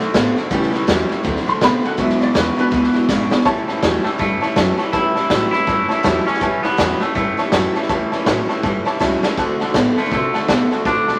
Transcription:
Already playing: E3 F#3 C4
0.00 D3 A3 C4 F#4, snare
0.14 A2 D3 A3 B3 C4 F#4, kick, snare, hi-hat pedal
0.36 D3 A3 C4 F#4, snare
0.51 A1 A2 C#3 E3 G3 B3 C#4 E4, kick, snare
0.62 snare
0.72 A1 A2 E3 G3 C#4 E4, snare
0.87 E2 A2 E3 F#3 G3 C#4 E4, kick, snare, hi-hat pedal
1.09 A2 E3 G3 C#4 E4, muted upright bass stroke, snare
1.24 D2 D3 E3 F#3 A3 C4 F#4, kick, snare
1.36 snare
1.46 D3 A3 C4 F#4 C6, muted upright bass stroke, snare
1.61 B2 D3 A3 B3 C4 F#4 B5, kick, snare, hi-hat pedal
1.83 D3 A3 C4 F#4, muted upright bass stroke, snare
1.87 F#5
1.97 E1 E2 B2 E3 F#3 G#3 D4 E4, kick, snare
2.01 E5
2.09 snare
2.19 C#2 E2 B2 E3 G#3 D4 E4 D5, snare
2.34 E2 B2 C#3 E3 G#3 D4 E4 B4, kick, snare, hi-hat pedal
2.56 E2 B2 E3 G#3 D4 E4 B4, snare
2.71 D2 E2 B2 E3 G#3 D4 E4, kick, snare
2.83 snare
2.93 E2 B2 E3 G#3 D4 E4, muted upright bass stroke, snare
3.09 G#1 E2 B2 C#3 E3 G#3 D4 E4, kick, snare, hi-hat pedal
3.30 E2 B2 E3 G#3 D4 E4, muted upright bass stroke, snare
3.45 A1 A2 E3 G3 C#4 E4 C#5 E5 A5, kick, snare
3.68 A1 A2 E3 G3 C#4 E4 C#5 E5 A5, snare
3.82 E2 A2 E3 F#3 G3 C#4 E4 C#5 E5 A5, kick, snare, hi-hat pedal
4.04 A2 E3 G3 A3 C#4 E4 C#5 E5 A5, muted upright bass stroke, snare
4.18 G2 A2 E3 G3 A3 C#4 E4 C#5 E5 A5, kick, snare
4.41 A2 E3 G3 C#4 E4 C#5 E5 A5, snare
4.56 F#2 A2 E3 F#3 G3 C#4 E4 C#5 E5 A5, kick, snare, hi-hat pedal
4.78 A2 E3 G3 C#4 E4 C#5 E5 A5, snare
4.93 E2 A2 E3 G3 C#4 E4 C#5 E5 A5, kick, snare
5.15 F#2 A2 E3 G3 C#4 E4 C#5 E5 A5, snare
5.30 A2 E3 F#3 G3 C#4 E4 C#5 E5 A5, kick, snare, hi-hat pedal
5.51 A2 E3 C#4 E4 C#5 E5 B5, muted upright bass stroke, snare
5.55 G3
5.67 G2 A2 E3 G3 C#4 E4 C#5 E5 A5, kick, snare
5.89 A2 E3 G3 C#4 E4 C#5 E5 A5, muted upright bass stroke, snare
6.03 E2 A2 E3 F#3 G3 C#4 E4 C#5 E5 A5, kick, snare, hi-hat pedal
6.26 A2 E3 G3 C#4 E4 C#5 E5 A5, muted upright bass stroke, snare
6.34 snare
6.41 A1 A2 E3 G3 C#4 E4 C#5 E5 A5, kick, snare
6.63 A1 A2 E3 G3 B3 C#4 E4 C#5 E5 A5, snare
6.77 E2 A2 E3 F#3 G3 C#4 E4 C#5 E5 A5, kick, snare, hi-hat pedal
7.00 A2 E3 G3 A3 C#4 E4 C#5 E5 A5, muted upright bass stroke, snare
7.15 G2 A2 E3 G3 A3 C#4 E4 C#5 E5 A5, kick, snare
7.37 A2 E3 G3 C#4 E4 C#5 E5 A5, muted upright bass stroke, snare
7.52 F#2 A2 E3 F#3 G3 C#4 E4 C#5 E5 A5, kick, snare, hi-hat pedal
7.75 A2 E3 G3 C#4 E4 C#5 E5 A5, muted upright bass stroke, snare
7.82 snare
7.89 E2 A2 E3 G3 C#4 E4 C#5 E5 A5, kick, snare
8.12 F#2 A2 E3 G3 C#4 E4 C#5 E5 A5, snare
8.26 A2 E3 F#3 G3 C#4 E4 C#5 E5 A5, kick, snare, hi-hat pedal
8.49 A2 E3 G3 C#4 E4 C#5 E5 A5, snare
8.63 G2 A2 E3 G3 C#4 E4 C#5 E5 A5, kick, snare
8.85 A2 E3 G3 C#4 E4 C#5 E5 A5, muted upright bass stroke, snare
8.99 C#2 A2 E3 F#3 G3 C#4 E4 C#5 E5 A5, kick, snare, hi-hat pedal
9.22 A2 E3 G3 C#4 E4 C#5 E5 A5, snare
9.37 D2 D3 A3 C4 F#4 D5 F#5 A5, kick, snare
9.59 D2 D3 A3 C4 F#4 D5 F#5 A5, snare
9.74 A2 D3 A3 B3 C4 F#4 D5 F#5 A5, kick, snare, hi-hat pedal
9.96 D3 A3 C4 F#4 D5 F#5 A5, muted upright bass stroke, snare
10.04 snare
10.12 C3 D3 A3 C4 F#4 D5 F#5 A5, kick, snare
10.34 D3 A3 C4 F#4 D5 F#5 A5, muted upright bass stroke, snare
10.48 B2 D3 A3 B3 C4 F#4 D5 F#5 A5, kick, snare, hi-hat pedal
10.71 D3 A3 C4 F#4 D5 F#5 A5, muted upright bass stroke, snare
10.85 A2 D3 A3 C4 D4 F#4 D5 F#5 A5, kick, snare
11.07 B2 D3 A3 C4 F#4 D5 F#5 A5, snare

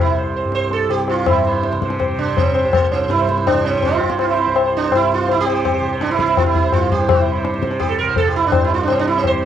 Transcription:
Already playing: C2 G2 C3
0.01 E4
0.18 C5
0.36 C5
0.44 G2
0.52 C5, tabla te
0.71 A4, tabla te
0.89 C3 G4, tabla na
1.08 F4, tabla na
1.26 G2 E4 C5, tabla na, tabla ge
1.47 C5
1.55 C5
1.63 C5, tabla te
1.71 C3 C5, tabla te
1.82 C5, tabla ke
1.90 C5, tabla te
1.99 C5, tabla na, tabla ge
2.08 C5
2.17 C3 D4
2.27 C5
2.37 C4, tabla tin, tabla ge
2.55 C5, tabla na
2.63 C2 C5
2.73 A#3, tabla na, tabla ge
2.91 C4, tabla te
3.01 C5
3.08 G2 E4, tabla te
3.19 C5, tabla te
3.28 C5, tabla ke
3.37 C5, tabla te
3.47 D4, tabla na, tabla ge
3.53 C3 C5
3.65 C4, tabla te
3.73 C5, tabla ge
3.83 F4, tabla tin, tabla ge
3.92 C5
3.99 C3, tabla na
4.10 C5, tabla ke
4.19 E4, tabla na
4.28 C5
4.37 C5
4.46 C2 C5
4.56 C5, tabla na
4.65 C5
4.77 D4
4.86 C5
4.90 G2, tabla na
4.95 E4
5.14 F4
5.21 C5
5.29 E4, tabla tin
5.36 C3
5.41 G4
5.47 C5, tabla na
5.56 C5
5.65 C5, tabla na, tabla ge
5.74 C5
5.80 C3 C5
5.93 C5
6.01 D4, tabla te
6.10 E4, tabla te
6.19 E4, tabla ke
6.24 C2, tabla te
6.29 C5
6.37 F4, tabla na, tabla ge
6.46 E4
6.55 E4, tabla ge
6.64 C5
6.69 G2 F4, tabla na, tabla ge
6.81 C5
6.91 G4, tabla ge
7.00 C5
7.09 E4, tabla na, tabla ge
7.13 C3 C5
7.25 C5
7.36 C5
7.44 C5, tabla te
7.53 C5, tabla te
7.58 C3 C5
7.63 tabla ke
7.70 C5, tabla te
7.80 G4, tabla na, tabla ge
7.89 A4
7.99 C2 A#4
8.07 C5
8.16 A4, tabla tin, tabla ge
8.28 G4
8.36 E4
8.46 G2 D4
8.52 C5, tabla na, tabla ge
8.64 E4
8.70 tabla te
8.74 F4
8.83 D4
8.88 C3 C4, tabla na
8.99 D4
9.08 E4
9.17 C4
9.24 C5, tabla na, tabla ge
9.34 C3 C5

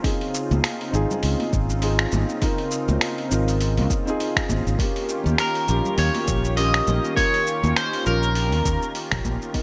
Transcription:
Already playing: F4
0.02 C#3 C4 D#4 F4 G#4, kick, open hi-hat, shaker
0.21 open hi-hat
0.34 shaker
0.51 C#2, high conga, shaker
0.64 finger snap, open hi-hat, shaker
0.81 open hi-hat
0.91 G#1 C4 D#4 F4, shaker
0.95 G#4
1.11 low conga, shaker
1.23 C#2, open hi-hat, shaker
1.40 open hi-hat, high conga
1.53 G#1, kick, shaker
1.70 shaker
1.81 C4 D#4 F4 G#4, open hi-hat, shaker
1.99 finger snap, open hi-hat
2.12 G#1, high conga, low conga, shaker
2.29 shaker
2.42 C4 D#4 F4 A#4, kick, open hi-hat, shaker
2.58 open hi-hat
2.71 shaker
2.88 C#2, high conga, shaker
3.01 finger snap, open hi-hat, shaker
3.18 open hi-hat
3.28 G#1 C4 D#4 F4, shaker
3.33 A#4
3.48 open hi-hat, shaker
3.61 open hi-hat, shaker
3.77 C#2, open hi-hat, high conga
3.90 kick, shaker
4.05 C4 D#4 F4, shaker
4.10 G#4
4.20 open hi-hat, shaker
4.37 finger snap, kick, open hi-hat
4.49 G#1, kick, high conga, shaker
4.67 G#1, shaker
4.77 D#3 A#3 C#4 F4 G4, kick, open hi-hat, shaker
4.81 G4
4.96 open hi-hat
5.09 shaker
5.24 D#2, high conga, shaker
5.38 A#4, finger snap, open hi-hat, shaker
5.55 open hi-hat
5.66 A#1 A#3 C#4 F4, shaker
5.70 G4
5.85 low conga, shaker
5.98 D#2 C#5, open hi-hat, shaker
6.15 open hi-hat, high conga
6.27 A#1, kick, shaker
6.44 shaker
6.56 A#3 C#4 F4 G4 D#5, open hi-hat, shaker
6.74 finger snap, open hi-hat
6.87 A#1, high conga, low conga, shaker
7.04 shaker
7.15 A#3 C#4 F4 A#4 C#5, kick, open hi-hat, shaker
7.34 open hi-hat
7.47 shaker
7.64 D#2, high conga, shaker
7.76 C5, finger snap, open hi-hat, shaker
7.93 open hi-hat
8.03 A#1 A#3 C#4 F4 A#4, shaker
8.08 A#4
8.23 shaker
8.35 open hi-hat, shaker
8.52 D#2, open hi-hat, high conga
8.65 D#2, kick, shaker
8.82 shaker
8.95 open hi-hat, shaker
9.12 A#1, finger snap, kick, open hi-hat
9.25 A#1, kick, high conga, shaker
9.42 shaker
9.53 C#3 B3 D#4 F4 A#5, kick, open hi-hat, shaker
9.57 A#4

